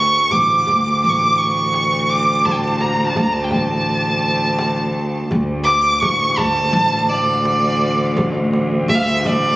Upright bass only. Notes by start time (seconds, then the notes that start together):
Already playing: D2
0.33 A1
0.69 D2
1.04 A1
2.46 A1
3.17 D2
3.53 A1
5.32 D2
6.02 A1
6.38 D2
6.73 A1
8.17 A1
8.88 D2
9.25 A1